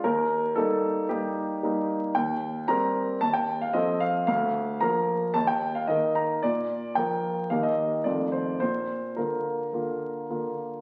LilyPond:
<<
  \new Staff \with { instrumentName = "Grand piano" } { \time 4/4 \key ees \lydian \tempo 4 = 112 bes'4 a'4 g'4. r8 | \key bes \major g''4 bes''4 a''16 g''8 f''16 ees''8 f''8 | f''4 bes''4 a''16 g''8 f''16 ees''8 bes''8 | d''4 g''4 f''16 ees''8. d''8 c''8 |
c''4 bes'2~ bes'8 r8 | }
  \new Staff \with { instrumentName = "Grand piano" } { \time 4/4 \key ees \lydian ees,4 <g bes ees'>4 <g bes ees'>4 <g bes ees'>4 | \key bes \major ees,4 <g c' bes'>4 ees,4 <f c' a'>4 | d,4 <f bes bes'>4 ees,4 <ees bes bes'>4 | bes,4 <f bes bes'>4 <ees, ees bes g'>4 <f, ees a f'>4 |
bes,4 <d bes f'>4 <d bes f'>4 <d bes f'>4 | }
>>